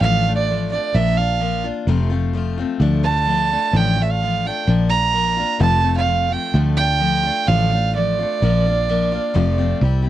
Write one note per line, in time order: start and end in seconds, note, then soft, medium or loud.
0.01 0.77 A1 medium
0.01 0.25 D3 medium
0.01 0.26 F3 medium
0.01 0.26 A3 medium
0.01 0.26 D4 medium
0.01 0.25 F4 medium
0.01 0.34 F5 medium
0.26 0.49 A3 soft
0.26 0.49 D4 soft
0.26 0.49 F4 medium
0.35 0.68 D5 medium
0.49 0.72 F3 medium
0.49 0.72 A3 medium
0.49 0.71 D4 medium
0.49 0.71 F4 medium
0.71 0.95 A3 soft
0.71 0.94 D4 soft
0.71 0.95 F4 soft
0.71 0.96 D5 medium
0.94 1.70 A#1 medium
0.94 1.18 A#2 medium
0.94 1.19 F3 medium
0.94 1.18 A#3 medium
0.94 1.18 D4 medium
0.94 1.17 F4 medium
0.94 1.18 E5 medium
1.17 1.40 D4 soft
1.17 1.41 F4 medium
1.17 1.64 F5 medium
1.21 1.40 A#3 soft
1.40 1.64 F3 medium
1.40 1.64 A#3 medium
1.40 1.63 D4 medium
1.40 1.63 F4 medium
1.64 1.88 A#3 soft
1.64 1.88 D4 soft
1.64 1.88 F4 medium
1.87 2.63 F1 medium
1.87 2.11 F2 medium
1.87 2.11 C3 medium
1.87 2.11 F3 medium
1.87 2.11 A3 medium
1.87 2.10 C4 medium
1.87 2.08 F4 medium
2.09 2.32 F3 soft
2.09 2.33 A3 soft
2.09 2.34 C4 medium
2.09 2.34 F4 medium
2.33 2.57 F3 medium
2.33 2.58 A3 medium
2.33 2.58 C4 medium
2.33 2.56 F4 medium
2.58 2.80 F3 soft
2.58 2.81 A3 medium
2.58 2.82 C4 medium
2.58 2.81 F4 medium
2.80 3.56 D2 medium
2.80 3.04 D3 medium
2.80 3.05 F3 medium
2.80 3.05 A3 medium
2.80 3.03 D4 medium
2.80 3.02 F4 medium
3.04 3.26 A3 soft
3.04 3.27 D4 soft
3.04 3.27 F4 soft
3.04 3.78 A5 loud
3.26 3.50 F3 medium
3.26 3.51 A3 medium
3.26 3.51 D4 medium
3.26 3.49 F4 medium
3.50 3.74 A3 soft
3.50 3.74 D4 soft
3.50 3.74 F4 soft
3.73 4.49 A1 medium
3.73 3.97 D3 medium
3.73 3.98 F3 medium
3.73 3.98 A3 medium
3.73 3.97 D4 medium
3.73 3.95 F4 medium
3.73 4.04 G5 medium
3.96 4.21 A3 soft
3.96 4.21 D4 soft
3.96 4.20 F4 soft
4.02 4.13 E5 medium
4.11 4.48 F5 medium
4.21 4.44 F3 soft
4.21 4.45 A3 medium
4.21 4.45 D4 medium
4.21 4.44 F4 medium
4.45 4.68 A3 soft
4.45 4.67 D4 soft
4.45 4.68 F4 soft
4.45 4.69 G5 medium
4.67 5.43 A#1 medium
4.67 4.91 A#2 medium
4.67 4.91 F3 medium
4.67 4.91 A#3 medium
4.67 4.90 D4 medium
4.67 4.88 F4 medium
4.89 5.12 A#3 soft
4.89 5.13 D4 soft
4.89 5.13 F4 medium
4.89 5.56 A#5 loud
5.12 5.37 F3 medium
5.12 5.37 A#3 medium
5.12 5.38 D4 medium
5.12 5.36 F4 medium
5.37 5.60 A#3 soft
5.37 5.61 D4 soft
5.37 5.60 F4 medium
5.60 6.36 F1 medium
5.60 5.84 F2 medium
5.60 5.84 C3 medium
5.60 5.84 F3 medium
5.60 5.83 A3 medium
5.60 5.82 C4 medium
5.60 5.80 F4 medium
5.60 5.94 A5 medium
5.82 6.05 F3 soft
5.82 6.06 A3 medium
5.82 6.07 C4 medium
5.82 6.06 F4 soft
5.97 6.34 F5 medium
6.06 6.30 F3 soft
6.06 6.30 A3 medium
6.06 6.29 C4 medium
6.06 6.28 F4 medium
6.29 6.54 F3 soft
6.29 6.54 A3 soft
6.29 6.54 C4 soft
6.29 6.53 F4 soft
6.29 6.55 G5 medium
6.54 7.30 D2 medium
6.54 6.77 D3 medium
6.54 6.78 F3 medium
6.54 6.78 A3 medium
6.54 6.77 D4 medium
6.54 6.76 F4 medium
6.77 7.00 A3 soft
6.77 7.01 D4 soft
6.77 7.01 F4 medium
6.77 7.49 G5 loud
7.00 7.24 F3 medium
7.00 7.24 A3 medium
7.00 7.24 D4 medium
7.00 7.22 F4 medium
7.23 7.47 A3 soft
7.23 7.48 D4 medium
7.23 7.47 F4 medium
7.47 8.24 A1 loud
7.47 7.71 D3 medium
7.47 7.71 F3 medium
7.47 7.71 A3 medium
7.47 7.71 D4 medium
7.47 7.70 F4 medium
7.47 7.94 F5 medium
7.71 7.95 A3 soft
7.71 7.95 D4 soft
7.71 7.94 F4 medium
7.96 8.18 F3 medium
7.96 8.18 A3 medium
7.96 8.19 D4 medium
7.96 8.17 F4 medium
7.96 9.78 D5 medium
8.19 8.43 A3 soft
8.19 8.42 D4 soft
8.19 8.41 F4 soft
8.42 9.17 A#1 medium
8.42 8.65 A#2 medium
8.42 8.65 F3 medium
8.42 8.65 A#3 medium
8.42 8.65 D4 medium
8.42 8.65 F4 medium
8.66 8.88 A#3 soft
8.66 8.89 D4 medium
8.66 8.88 F4 medium
8.88 9.11 F3 medium
8.88 9.12 A#3 medium
8.88 9.12 D4 medium
8.88 9.11 F4 medium
9.12 9.35 A#3 soft
9.12 9.35 D4 medium
9.12 9.35 F4 medium
9.34 9.73 F1 loud
9.34 9.57 F2 medium
9.34 9.58 C3 medium
9.34 9.58 F3 medium
9.34 9.58 A3 medium
9.34 9.57 C4 medium
9.34 9.57 F4 medium
9.58 9.82 F3 soft
9.58 9.82 A3 medium
9.58 9.81 C4 medium
9.58 9.81 F4 medium
9.81 10.09 C2 loud
9.81 10.05 G3 medium
9.81 10.05 C4 medium
9.81 10.03 E4 medium
9.81 10.01 G4 medium
10.02 10.09 C4 soft
10.02 10.09 E4 medium
10.02 10.09 G4 soft